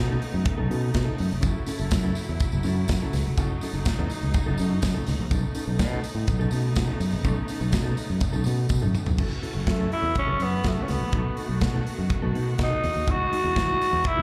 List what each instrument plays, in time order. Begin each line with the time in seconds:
Already playing: fingered electric bass B2, string section C#3 A3 B3 D#4
0.09 clean electric guitar C#4 D#4 A4
0.22 muted clean electric guitar stroke, open hi-hat
0.33 fingered electric bass F#2, muted clean electric guitar stroke
0.44 muted clean electric guitar stroke, kick, closed hi-hat
0.57 fingered electric bass B1, clean electric guitar C#4 D#4 A4
0.69 fingered electric bass B2, clean electric guitar C#4 D#4 A4, open hi-hat
0.82 muted clean electric guitar stroke
0.93 fingered electric bass B2, muted clean electric guitar stroke, kick, snare, closed hi-hat
1.05 clean electric guitar C#4 D#4 A4
1.17 fingered electric bass F#2, muted clean electric guitar stroke, open hi-hat
1.30 fingered electric bass F1, muted clean electric guitar stroke
1.41 fingered electric bass F#1, string section F#3 E4, clean electric guitar C#4 E4 A4, kick, closed hi-hat, tambourine
1.55 muted clean electric guitar stroke
1.66 clean electric guitar C#4 E4 A4, open hi-hat, tambourine
1.79 fingered electric bass F#1, clean electric guitar C#4 E4 A4, tambourine
1.91 fingered electric bass F#2, muted clean electric guitar stroke, kick, snare, closed hi-hat, tambourine
2.03 clean electric guitar C#4 E4 A4
2.15 muted clean electric guitar stroke, open hi-hat, tambourine
2.28 fingered electric bass E2, muted clean electric guitar stroke
2.40 muted clean electric guitar stroke, kick, closed hi-hat, tambourine
2.52 fingered electric bass F#1, muted clean electric guitar stroke, tambourine
2.63 fingered electric bass F#2, clean electric guitar C#4 E4 A4, open hi-hat, tambourine
2.77 muted clean electric guitar stroke
2.88 fingered electric bass F#2, kick, snare, closed hi-hat, tambourine
3.02 clean electric guitar C#4 E4 A4
3.13 fingered electric bass C#2, snare, open hi-hat, tambourine
3.25 fingered electric bass F1, muted clean electric guitar stroke, tambourine
3.37 fingered electric bass F#1, clean electric guitar C#4 E4 A4, string section D#4, kick, closed hi-hat, tambourine
3.51 muted clean electric guitar stroke
3.61 clean electric guitar C#4 E4 A4, open hi-hat, tambourine
3.73 fingered electric bass F#1, clean electric guitar C#4 E4 A4, tambourine
3.85 muted clean electric guitar stroke, kick, snare, closed hi-hat, tambourine
3.99 fingered electric bass E2, clean electric guitar C#4 E4 A4
4.10 muted clean electric guitar stroke, open hi-hat, tambourine
4.21 fingered electric bass C#2, muted clean electric guitar stroke, tambourine
4.34 muted clean electric guitar stroke, kick, closed hi-hat, tambourine
4.46 fingered electric bass F#1, clean electric guitar C#4 E4 A4
4.58 fingered electric bass F#2, clean electric guitar C#4 E4 A4, open hi-hat, tambourine
4.72 muted clean electric guitar stroke
4.82 fingered electric bass F#2, muted clean electric guitar stroke, kick, snare, closed hi-hat, tambourine
4.94 clean electric guitar C#4 E4 A4
5.06 fingered electric bass C#2, muted clean electric guitar stroke, snare, open hi-hat, tambourine
5.19 fingered electric bass A#1, muted clean electric guitar stroke
5.31 fingered electric bass B1, string section C#3 A3 B3 D#4, clean electric guitar C#4 D#4 A4, kick, closed hi-hat, tambourine
5.44 muted clean electric guitar stroke
5.55 clean electric guitar C#4 D#4 A4, open hi-hat, tambourine
5.67 fingered electric bass B1, clean electric guitar C#4 D#4 A4
5.79 fingered electric bass B2, kick, snare, tambourine
5.91 clean electric guitar C#4 D#4 A4
6.03 muted clean electric guitar stroke, open hi-hat, tambourine
6.15 fingered electric bass A2, muted clean electric guitar stroke
6.27 fingered electric bass B1, muted clean electric guitar stroke, kick, closed hi-hat, tambourine
6.40 clean electric guitar C#4 D#4 A4, tambourine
6.51 fingered electric bass B2, clean electric guitar C#4 D#4 A4, open hi-hat, tambourine
6.64 muted clean electric guitar stroke
6.75 fingered electric bass B2, muted clean electric guitar stroke, kick, snare, closed hi-hat, tambourine
6.87 clean electric guitar C#4 D#4 A4
7.00 fingered electric bass F#2, muted clean electric guitar stroke, open hi-hat, tambourine
7.12 fingered electric bass A#1, muted clean electric guitar stroke, tambourine
7.24 fingered electric bass B1, clean electric guitar C#4 D#4 A4, kick, closed hi-hat, tambourine
7.37 muted clean electric guitar stroke
7.48 clean electric guitar C#4 D#4 A4, open hi-hat, tambourine
7.60 fingered electric bass B1, clean electric guitar C#4 D#4 A4, tambourine
7.72 fingered electric bass B2, kick, snare, closed hi-hat, tambourine
7.84 clean electric guitar C#4 D#4 A4
7.96 muted clean electric guitar stroke, open hi-hat, tambourine
8.07 fingered electric bass F#2, muted clean electric guitar stroke
8.20 muted clean electric guitar stroke, kick, closed hi-hat, tambourine
8.33 fingered electric bass B1, clean electric guitar C#4 D#4 A4, tambourine
8.44 fingered electric bass B2, clean electric guitar C#4 D#4 A4, open hi-hat, tambourine
8.58 muted clean electric guitar stroke
8.69 fingered electric bass B2, muted clean electric guitar stroke, kick, high tom, tambourine
8.81 fingered electric bass F#2, clean electric guitar C#4 D#4 A4, mid tom
8.94 muted clean electric guitar stroke, mid tom, tambourine
9.06 fingered electric bass B1, muted clean electric guitar stroke, floor tom, tambourine
9.18 fingered electric bass F#1, string section E3 A3 C#4 F#4, clean electric guitar C#4 E4 A4, kick, crash
9.31 muted clean electric guitar stroke
9.42 clean electric guitar C#4 E4 A4, open hi-hat
9.55 fingered electric bass F#1, clean electric guitar C#4 E4 A4
9.67 fingered electric bass F#2, tenor saxophone A3, kick, snare, closed hi-hat
9.79 clean electric guitar C#4 E4 A4
9.91 tenor saxophone E4, muted clean electric guitar stroke, open hi-hat
10.02 fingered electric bass E2, muted clean electric guitar stroke
10.15 tenor saxophone C#4, muted clean electric guitar stroke, kick, closed hi-hat
10.27 fingered electric bass F#1, clean electric guitar C#4 E4 A4
10.39 fingered electric bass F#2, tenor saxophone B3, clean electric guitar C#4 E4 A4, open hi-hat
10.53 muted clean electric guitar stroke
10.64 fingered electric bass F#2, tenor saxophone A3, muted clean electric guitar stroke, kick, snare, closed hi-hat
10.77 clean electric guitar C#4 E4 A4
10.83 tenor saxophone C#4
10.88 fingered electric bass C#2, tenor saxophone B3, muted clean electric guitar stroke, snare, open hi-hat
11.01 fingered electric bass A#1, muted clean electric guitar stroke
11.12 fingered electric bass B1, string section D#3 B3, clean electric guitar B3 D#4 A4, kick, closed hi-hat
11.26 muted clean electric guitar stroke
11.37 clean electric guitar B3 D#4 A4, open hi-hat
11.49 fingered electric bass B1, clean electric guitar B3 D#4 A4
11.61 fingered electric bass B2, muted clean electric guitar stroke, kick, snare, closed hi-hat
11.74 clean electric guitar B3 D#4 A4
11.86 muted clean electric guitar stroke, open hi-hat
11.98 fingered electric bass F#2, muted clean electric guitar stroke
12.10 muted clean electric guitar stroke, kick, closed hi-hat
12.22 fingered electric bass B1, clean electric guitar B3 D#4 A4
12.34 fingered electric bass B2, clean electric guitar B3 D#4 A4, open hi-hat
12.46 muted clean electric guitar stroke
12.58 fingered electric bass B2, muted clean electric guitar stroke, kick, snare, closed hi-hat
12.63 tenor saxophone D#4
12.70 clean electric guitar B3 D#4 A4
12.82 fingered electric bass E2, string section E3 G#3 D#4, muted clean electric guitar stroke, open hi-hat
12.95 fingered electric bass D#2, muted clean electric guitar stroke
13.07 fingered electric bass E2, clean electric guitar G#3 D#4 F#4, tenor saxophone F#4, kick, closed hi-hat
13.19 muted clean electric guitar stroke
13.31 clean electric guitar G#3 D#4 F#4, open hi-hat
13.43 fingered electric bass E2, clean electric guitar G#3 D#4 F#4
13.56 fingered electric bass E3, kick, snare, closed hi-hat
13.68 clean electric guitar G#3 D#4 F#4
13.81 muted clean electric guitar stroke, open hi-hat
13.93 fingered electric bass E2, muted clean electric guitar stroke
14.05 tenor saxophone E4, muted clean electric guitar stroke, kick
14.17 fingered electric bass E2, clean electric guitar G#3 D#4 F#4